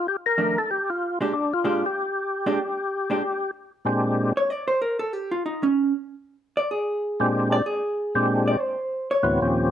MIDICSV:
0, 0, Header, 1, 3, 480
1, 0, Start_track
1, 0, Tempo, 315956
1, 94, Time_signature, 4, 2, 24, 8
1, 14757, End_track
2, 0, Start_track
2, 0, Title_t, "Hollow-body jazz guitar"
2, 0, Program_c, 0, 26
2, 572, Note_on_c, 0, 41, 54
2, 578, Note_on_c, 0, 51, 53
2, 580, Note_on_c, 0, 62, 53
2, 582, Note_on_c, 0, 57, 49
2, 840, Note_off_c, 0, 41, 0
2, 842, Note_off_c, 0, 51, 0
2, 843, Note_off_c, 0, 62, 0
2, 845, Note_off_c, 0, 57, 0
2, 1832, Note_on_c, 0, 46, 62
2, 1835, Note_on_c, 0, 56, 59
2, 1850, Note_on_c, 0, 62, 70
2, 1850, Note_on_c, 0, 67, 73
2, 1997, Note_off_c, 0, 46, 0
2, 1999, Note_off_c, 0, 56, 0
2, 2006, Note_off_c, 0, 62, 0
2, 2006, Note_off_c, 0, 67, 0
2, 2497, Note_on_c, 0, 46, 61
2, 2501, Note_on_c, 0, 56, 71
2, 2510, Note_on_c, 0, 67, 66
2, 2514, Note_on_c, 0, 62, 67
2, 2762, Note_off_c, 0, 46, 0
2, 2764, Note_off_c, 0, 56, 0
2, 2768, Note_off_c, 0, 67, 0
2, 2770, Note_off_c, 0, 62, 0
2, 3742, Note_on_c, 0, 46, 72
2, 3744, Note_on_c, 0, 56, 73
2, 3751, Note_on_c, 0, 62, 82
2, 3764, Note_on_c, 0, 67, 72
2, 3912, Note_off_c, 0, 46, 0
2, 3913, Note_off_c, 0, 56, 0
2, 3916, Note_off_c, 0, 62, 0
2, 3923, Note_off_c, 0, 67, 0
2, 4708, Note_on_c, 0, 46, 59
2, 4719, Note_on_c, 0, 62, 65
2, 4720, Note_on_c, 0, 56, 61
2, 4732, Note_on_c, 0, 67, 70
2, 4875, Note_off_c, 0, 46, 0
2, 4880, Note_off_c, 0, 62, 0
2, 4881, Note_off_c, 0, 56, 0
2, 4887, Note_off_c, 0, 67, 0
2, 6641, Note_on_c, 0, 73, 87
2, 6838, Note_off_c, 0, 73, 0
2, 6838, Note_on_c, 0, 74, 89
2, 7098, Note_off_c, 0, 74, 0
2, 7104, Note_on_c, 0, 72, 82
2, 7286, Note_off_c, 0, 72, 0
2, 7316, Note_on_c, 0, 70, 78
2, 7580, Note_off_c, 0, 70, 0
2, 7586, Note_on_c, 0, 69, 80
2, 7793, Note_off_c, 0, 69, 0
2, 7793, Note_on_c, 0, 67, 72
2, 8071, Note_off_c, 0, 67, 0
2, 8074, Note_on_c, 0, 65, 73
2, 8251, Note_off_c, 0, 65, 0
2, 8290, Note_on_c, 0, 63, 67
2, 8554, Note_on_c, 0, 61, 86
2, 8560, Note_off_c, 0, 63, 0
2, 8999, Note_off_c, 0, 61, 0
2, 9982, Note_on_c, 0, 74, 85
2, 10165, Note_off_c, 0, 74, 0
2, 10194, Note_on_c, 0, 68, 62
2, 10907, Note_off_c, 0, 68, 0
2, 11431, Note_on_c, 0, 74, 103
2, 11610, Note_off_c, 0, 74, 0
2, 11638, Note_on_c, 0, 68, 77
2, 12349, Note_off_c, 0, 68, 0
2, 12876, Note_on_c, 0, 74, 76
2, 13069, Note_off_c, 0, 74, 0
2, 13069, Note_on_c, 0, 72, 79
2, 13833, Note_off_c, 0, 72, 0
2, 13839, Note_on_c, 0, 73, 84
2, 14452, Note_off_c, 0, 73, 0
2, 14757, End_track
3, 0, Start_track
3, 0, Title_t, "Tonewheel organ"
3, 0, Program_c, 1, 16
3, 125, Note_on_c, 1, 67, 92
3, 251, Note_off_c, 1, 67, 0
3, 396, Note_on_c, 1, 70, 110
3, 887, Note_off_c, 1, 70, 0
3, 887, Note_on_c, 1, 69, 94
3, 1068, Note_off_c, 1, 69, 0
3, 1075, Note_on_c, 1, 67, 95
3, 1364, Note_on_c, 1, 65, 86
3, 1369, Note_off_c, 1, 67, 0
3, 1804, Note_off_c, 1, 65, 0
3, 2028, Note_on_c, 1, 62, 88
3, 2325, Note_off_c, 1, 62, 0
3, 2333, Note_on_c, 1, 65, 102
3, 2816, Note_off_c, 1, 65, 0
3, 2826, Note_on_c, 1, 67, 91
3, 5332, Note_off_c, 1, 67, 0
3, 5846, Note_on_c, 1, 46, 68
3, 5856, Note_on_c, 1, 60, 62
3, 5861, Note_on_c, 1, 56, 67
3, 5867, Note_on_c, 1, 62, 60
3, 5872, Note_on_c, 1, 67, 72
3, 6567, Note_off_c, 1, 46, 0
3, 6572, Note_off_c, 1, 60, 0
3, 6574, Note_off_c, 1, 56, 0
3, 6578, Note_off_c, 1, 62, 0
3, 6580, Note_off_c, 1, 67, 0
3, 10934, Note_on_c, 1, 46, 73
3, 10939, Note_on_c, 1, 60, 65
3, 10940, Note_on_c, 1, 56, 68
3, 10946, Note_on_c, 1, 62, 66
3, 10953, Note_on_c, 1, 67, 74
3, 11570, Note_off_c, 1, 46, 0
3, 11572, Note_off_c, 1, 60, 0
3, 11573, Note_off_c, 1, 56, 0
3, 11576, Note_off_c, 1, 62, 0
3, 11579, Note_off_c, 1, 67, 0
3, 12376, Note_on_c, 1, 46, 73
3, 12385, Note_on_c, 1, 56, 69
3, 12387, Note_on_c, 1, 67, 77
3, 12388, Note_on_c, 1, 60, 67
3, 12394, Note_on_c, 1, 62, 66
3, 13011, Note_off_c, 1, 46, 0
3, 13015, Note_off_c, 1, 56, 0
3, 13016, Note_off_c, 1, 67, 0
3, 13017, Note_off_c, 1, 60, 0
3, 13020, Note_off_c, 1, 62, 0
3, 14016, Note_on_c, 1, 45, 53
3, 14020, Note_on_c, 1, 38, 58
3, 14022, Note_on_c, 1, 52, 55
3, 14023, Note_on_c, 1, 59, 56
3, 14026, Note_on_c, 1, 66, 60
3, 14027, Note_on_c, 1, 60, 55
3, 14281, Note_off_c, 1, 45, 0
3, 14283, Note_off_c, 1, 38, 0
3, 14284, Note_off_c, 1, 52, 0
3, 14285, Note_off_c, 1, 59, 0
3, 14286, Note_off_c, 1, 66, 0
3, 14287, Note_off_c, 1, 60, 0
3, 14296, Note_on_c, 1, 46, 51
3, 14298, Note_on_c, 1, 39, 58
3, 14306, Note_on_c, 1, 53, 53
3, 14309, Note_on_c, 1, 60, 55
3, 14315, Note_on_c, 1, 61, 48
3, 14316, Note_on_c, 1, 67, 62
3, 14723, Note_off_c, 1, 46, 0
3, 14725, Note_off_c, 1, 39, 0
3, 14728, Note_off_c, 1, 53, 0
3, 14730, Note_off_c, 1, 60, 0
3, 14733, Note_off_c, 1, 61, 0
3, 14733, Note_off_c, 1, 67, 0
3, 14757, End_track
0, 0, End_of_file